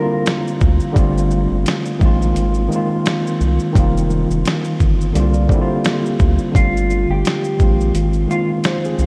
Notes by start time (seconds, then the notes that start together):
Already playing: D3 G3 A#3 C4 E4 F4 A#4
0.02 F4
0.26 snare, closed hi-hat, shaker
0.47 shaker
0.61 D2, kick, shaker
0.80 shaker
0.92 D3 G3 A3, kick
0.96 G1 C4 F4, closed hi-hat, shaker
1.18 shaker
1.31 shaker
1.51 G1
1.66 snare, closed hi-hat, shaker
1.85 shaker
1.99 A#1 D#3 G#3 A#3, kick, shaker
2.04 C4 F4
2.22 shaker
2.36 G#1, closed hi-hat, shaker
2.54 shaker
2.68 D#3 G#3 A#3, shaker
2.74 C4 F4
3.06 snare, closed hi-hat, shaker
3.27 shaker
3.41 C2, shaker
3.59 shaker
3.73 F1 D#3 G3 A#3, kick, closed hi-hat, shaker
3.78 C4 F4
3.97 shaker
4.10 shaker
4.30 F1, shaker
4.45 snare, closed hi-hat, shaker
4.65 shaker
4.80 G1, kick, shaker
5.01 shaker
5.13 C2 D3 G3 A#3, closed hi-hat, shaker
5.19 C4 F4
5.34 F4 D5, shaker
5.48 D3 G3 A#3 C5, kick, shaker
5.54 C4 E4
5.62 F4
5.70 A#3 G4
5.85 snare, closed hi-hat, shaker
6.06 shaker
6.19 D2, kick, shaker
6.38 shaker
6.52 G1 D3 G3 A3 F4, kick, closed hi-hat, shaker
6.57 C4 F4
6.77 shaker
6.90 shaker
7.09 G1 G4
7.25 snare, closed hi-hat, shaker
7.44 shaker
7.57 A#1 D#3 G#3 A#3, kick, shaker
7.62 C4 F4
7.80 shaker
7.95 G#1, closed hi-hat, shaker
8.13 shaker
8.27 D#3 G#3 A#3
8.31 C4 F4, shaker
8.64 D#4 C5, snare, closed hi-hat, shaker
8.85 C4 G#4, shaker
8.98 C2, shaker